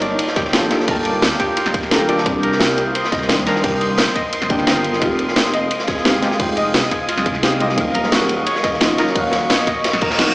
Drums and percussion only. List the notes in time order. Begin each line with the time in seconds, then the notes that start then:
0.01 closed hi-hat, ride
0.19 closed hi-hat, ride
0.27 snare
0.36 kick, snare, closed hi-hat, ride
0.45 snare
0.53 snare, closed hi-hat, ride
0.71 snare, closed hi-hat, ride
0.80 snare
0.88 kick, closed hi-hat, open hi-hat
1.05 closed hi-hat, ride
1.22 snare, closed hi-hat, ride
1.31 snare
1.39 kick, snare, closed hi-hat, ride
1.57 closed hi-hat, ride
1.66 snare
1.74 kick, closed hi-hat, ride
1.83 snare
1.91 snare, closed hi-hat
2.00 snare
2.09 closed hi-hat, ride
2.18 snare
2.26 kick, closed hi-hat, ride
2.43 closed hi-hat, ride
2.52 snare
2.60 snare, closed hi-hat, ride
2.70 snare
2.77 closed hi-hat, ride
2.95 closed hi-hat, ride
3.04 snare
3.12 kick, snare, closed hi-hat, ride
3.22 snare
3.29 snare, closed hi-hat, ride
3.46 snare, closed hi-hat, ride
3.56 snare
3.63 kick, closed hi-hat, open hi-hat
3.81 closed hi-hat, ride
3.97 snare, closed hi-hat, ride
4.07 snare
4.16 kick, snare, closed hi-hat, ride
4.33 closed hi-hat, ride
4.42 snare
4.50 kick, closed hi-hat, ride
4.59 snare
4.67 snare, closed hi-hat, ride
4.76 snare
4.84 closed hi-hat, ride
4.93 snare
5.02 kick, closed hi-hat, ride
5.19 closed hi-hat, ride
5.28 snare
5.36 snare, closed hi-hat, ride
5.45 snare
5.53 closed hi-hat, ride
5.71 closed hi-hat, ride
5.79 snare
5.87 kick, snare, closed hi-hat, ride
5.96 snare
6.05 snare, closed hi-hat, ride
6.23 snare, closed hi-hat, ride
6.31 snare
6.40 kick, closed hi-hat, open hi-hat
6.57 closed hi-hat, ride
6.74 snare, closed hi-hat, ride
6.83 snare
6.91 kick, snare, closed hi-hat, ride
7.09 closed hi-hat, ride
7.17 snare
7.26 kick, closed hi-hat, ride
7.35 snare
7.43 snare, closed hi-hat
7.52 snare
7.60 closed hi-hat, ride
7.69 snare
7.78 kick, closed hi-hat, ride
7.94 closed hi-hat, ride
8.04 snare
8.12 snare, closed hi-hat, ride
8.21 snare
8.29 closed hi-hat, ride
8.46 closed hi-hat, ride
8.55 snare
8.63 kick, snare, closed hi-hat, ride
8.73 snare
8.80 snare, closed hi-hat, ride
8.97 snare, closed hi-hat, ride
9.07 snare
9.15 kick, closed hi-hat, open hi-hat
9.32 snare, closed hi-hat, ride
9.50 snare, closed hi-hat, ride
9.58 snare
9.67 kick, snare, closed hi-hat, ride
9.84 snare, closed hi-hat, ride
9.93 snare
10.01 kick, closed hi-hat, ride
10.11 snare, ride
10.19 snare, closed hi-hat
10.28 snare, ride